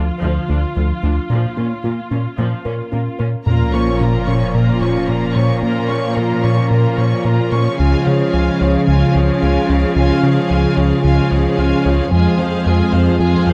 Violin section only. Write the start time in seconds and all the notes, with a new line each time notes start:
3.46 A#4 A#5
3.74 C#5 C#6
4.01 A#4 A#5
4.28 C#5 C#6
4.54 A#4 A#5
4.81 C#5 C#6
5.08 A#4 A#5
5.34 C#5 C#6
5.61 A#4 A#5
5.89 C#5 C#6
6.15 A#4 A#5
6.43 C#5 C#6
6.70 A#4 A#5
6.97 C#5 C#6
7.25 A#4 A#5
7.52 C#5 C#6
7.79 F5 G#5
8.06 C#5 F5
8.34 F5 G#5
8.60 C#5 F5
8.87 F5 G#5
9.15 C#5 F5
9.42 F5 G#5
9.69 C#5 F5
9.97 F5 G#5
10.23 C#5 F5
10.50 F5 G#5
10.77 C#5 F5
11.05 F5 G#5
11.31 C#5 F5
11.58 F5 G#5
11.85 C#5 F5
12.12 G#4 G#5
12.40 C5 F5
12.67 G#4 G#5
12.93 C5 F5
13.20 G#4 G#5
13.47 C5 F5